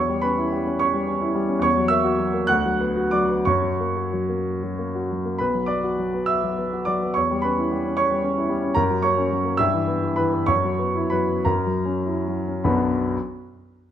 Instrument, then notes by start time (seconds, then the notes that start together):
grand piano
Already playing: E2 C#5 C#6
0.09 G3
0.22 C#4 B4 B5
0.38 E4
0.52 G3
0.67 C#4
0.79 C#5 C#6
0.94 G3
1.08 C#4
1.21 E4
1.35 G3
1.49 C#4
1.59 E2 C#5 C#6
1.76 F#3
1.88 A#3 E5 E6
2.04 F#4
2.19 F#3
2.34 A#3
2.47 D2 F#5 F#6
2.65 F#3
2.80 B3
2.96 F#4
3.11 F#3 D5 D6
3.29 B3
3.45 F#2 C#5 C#6
3.62 F#3
3.80 A#3
3.96 F#4
4.13 F#3
4.29 A#3
4.63 F#3
4.79 A#3
4.95 F#4
5.11 F#3
5.25 A#3
5.38 B1 B4 B5
5.54 F#3
5.66 B3 D5 D6
5.83 F#4
5.98 F#3
6.14 B3
6.26 E5 E6
6.43 F#3
6.58 B3
6.73 F#4
6.85 F#3 D5 D6
7.02 B3
7.14 E2 C#5 C#6
7.31 G3
7.42 C#4 B4 B5
7.58 E4
7.72 G3
7.86 C#4
7.97 C#5 C#6
8.11 G3
8.24 C#4
8.38 E4
8.49 G3
8.63 C#4
8.74 F#2 A#4 A#5
8.90 F#3
9.02 A#3 C#5 C#6
9.18 C#4
9.31 F#3
9.45 A#3
9.57 G2 E5 E6
9.73 E3
9.88 B3
10.03 E4
10.16 E3 B4 B5
10.33 B3
10.46 F#2 C#5 C#6
10.64 F#3
10.79 B3
10.95 E4
11.10 F#3 B4 B5
11.28 B3
11.45 F#2 A#4 A#5
11.66 F#3
11.86 C#4
12.06 E4
12.28 F#3
12.48 C#4
12.64 B1 F#2 F#3 B3 D4 F#4 B5